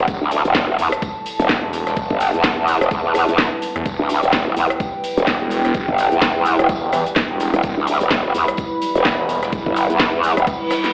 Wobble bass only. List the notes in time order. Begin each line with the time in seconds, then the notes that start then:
0.21 D2
0.45 E1
0.79 E2
1.40 E1
2.10 G1
2.34 E2
2.81 E1
2.91 E2
3.28 E2
3.99 D2
4.23 E1
4.56 E2
5.17 E1
5.88 G1
6.12 E2
6.59 E1
7.54 E1
7.77 D2
8.01 E1
8.34 E2
8.95 E1
9.66 G1
9.90 E2
10.37 E1